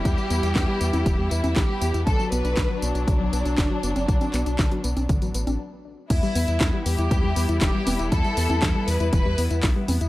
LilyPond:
<<
  \new Staff \with { instrumentName = "Violin section" } { \time 4/4 \key e \minor \tempo 4 = 119 g'2~ g'8 e'8 g'4 | a'8 b'4 d'2~ d'8~ | d'2. r4 | e'4. g'4. g'4 |
a'4. b'8 b'4 r4 | }
  \new Staff \with { instrumentName = "String section" } { \time 4/4 \key e \minor << { <g e'>1 | <fis d'>1~ | <fis d'>2. r4 | <g e'>1~ |
<g e'>1 | } \\ { b1~ | b1~ | b2. r4 | b1~ |
b1 | } >> }
  \new Staff \with { instrumentName = "Synth arpeggio sound" } { \time 4/4 \key e \minor e16 g16 b16 e'16 e16 g16 b16 e'16 e16 g16 b16 e'16 e16 g16 b16 e'16 | d16 fis16 b16 d'16 d16 fis16 b16 d'16 d16 fis16 b16 d'16 d16 fis16 b16 d'16 | d16 fis16 b16 d'16 d16 fis16 b16 d'16 d16 fis16 b16 d'16 r4 | e16 g16 b16 e'16 e16 g16 b16 e'16 e16 g16 b16 e'16 e16 g16 b16 e'16 |
e16 g16 b16 e'16 e16 g16 b16 e'16 e16 g16 b16 e'16 e16 g16 b16 e'16 | }
  \new Staff \with { instrumentName = "Analog synth bass" } { \clef bass \time 4/4 \key e \minor e,16 r16 e,16 e,16 e,16 r16 e,16 e,16 e,,16 e,16 e,16 e,16 b,,16 r16 e,16 e,16 | b,,16 r16 b,,16 b,,16 b,,16 r16 b,,16 b,,16 b,,16 b,,16 b,,16 b,,16 fis,,16 r16 fis,,16 fis,,16 | b,,16 r16 b,,16 b,,16 b,,16 r16 b,,16 b,,16 a,,16 a,,16 a,,16 a,,16 r4 | e,16 r16 e,16 e,16 e,16 r16 e,16 e,16 e,16 e,16 e,16 e,16 e,,16 r16 e,,16 e,,16 |
e,16 r16 e,16 e,16 e,16 r16 e,16 e,16 e,,16 e,16 e,16 e,16 b,,16 r16 e,16 e,16 | }
  \new DrumStaff \with { instrumentName = "Drums" } \drummode { \time 4/4 <hh bd tamb>16 tamb16 <hh tamb>16 <hh tamb>16 <hc hh bd sn tamb>8 <hh tamb>16 <cgho hh tamb>16 <hh bd tamb>8 <hh tamb>16 <cgho hh tamb>16 <hc hh bd sn tamb>8 <hh tamb>16 <hh tamb>16 | <hh bd tamb>16 tamb16 <hh tamb>16 <hh tamb>16 <hc hh bd sn tamb>8 <hh tamb>16 <hh tamb>16 <hh bd tamb>8 <hh tamb>16 <hh tamb>16 <hc hh bd sn tamb>8 <hh tamb>16 <cgho hh tamb>16 | <hh bd tamb>16 <cgho hh tamb>16 <hc hh tamb>16 <hh tamb>16 <hc hh bd sn tamb>16 hh16 <hh tamb>16 <cgho hh tamb>16 <hh bd tamb>16 <hh tamb>16 <hh tamb>16 <cgho hh tamb>16 r4 | <cymc hh bd tamb>16 tamb16 <hho tamb>16 <hh tamb>16 <hc hh bd sn tamb>8 <hho tamb>16 <hh tamb>16 <hh bd tamb>8 <hho tamb>16 <hh tamb>16 <hc hh bd sn tamb>8 <cgho hho tamb>16 <hh tamb>16 |
<hh bd tamb>16 tamb16 <hho tamb>16 <cgho hh tamb>16 <hc hh bd sn tamb>8 <hho tamb>16 <hh tamb>16 <hh bd tamb>8 <hho tamb>16 <hh tamb>16 <hc hho bd sn tamb>8 <cgho hho tamb>16 <hh tamb>16 | }
>>